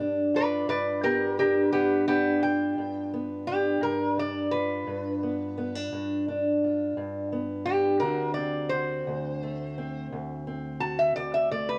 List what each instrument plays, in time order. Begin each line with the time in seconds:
Already playing: steel-string acoustic guitar G2 G4
0.00 steel-string acoustic guitar D4
0.34 steel-string acoustic guitar F4, resonator guitar played with a steel bar B4 D5
0.68 steel-string acoustic guitar G2, resonator guitar played with a steel bar B4 D5
1.03 steel-string acoustic guitar B3, resonator guitar played with a steel bar G4 A#4
1.39 steel-string acoustic guitar D4, resonator guitar played with a steel bar G4 A#4
1.72 steel-string acoustic guitar G2, resonator guitar played with a steel bar B3 G4
2.08 resonator guitar played with a steel bar B3 G4, steel-string acoustic guitar D4
2.43 steel-string acoustic guitar F4, resonator guitar played with a steel bar G5
2.78 steel-string acoustic guitar G2
3.13 steel-string acoustic guitar B3
3.47 steel-string acoustic guitar D4, resonator guitar played with a steel bar G4
3.81 steel-string acoustic guitar G2, resonator guitar played with a steel bar A#4
4.17 steel-string acoustic guitar D4, resonator guitar played with a steel bar D5
4.51 steel-string acoustic guitar F4, resonator guitar played with a steel bar B4
4.87 steel-string acoustic guitar G2
5.23 steel-string acoustic guitar B3
5.58 steel-string acoustic guitar B3
5.75 steel-string acoustic guitar D4
5.93 steel-string acoustic guitar G2
6.28 steel-string acoustic guitar D4
6.64 steel-string acoustic guitar F4
6.97 steel-string acoustic guitar G2
7.32 steel-string acoustic guitar B3
7.66 steel-string acoustic guitar D4, resonator guitar played with a steel bar G4
8.00 steel-string acoustic guitar D2 D3 C4 F#4, resonator guitar played with a steel bar A#4
8.34 steel-string acoustic guitar C4, resonator guitar played with a steel bar D5
8.70 steel-string acoustic guitar F#4, resonator guitar played with a steel bar C5
9.07 steel-string acoustic guitar D2
9.43 steel-string acoustic guitar A3
9.78 steel-string acoustic guitar C4
10.12 steel-string acoustic guitar D2
10.47 steel-string acoustic guitar C4
10.80 steel-string acoustic guitar F#4, resonator guitar played with a steel bar A5
10.99 resonator guitar played with a steel bar E5
11.16 steel-string acoustic guitar D2, resonator guitar played with a steel bar D5
11.34 resonator guitar played with a steel bar E5
11.51 steel-string acoustic guitar A3, resonator guitar played with a steel bar D5
11.69 resonator guitar played with a steel bar B4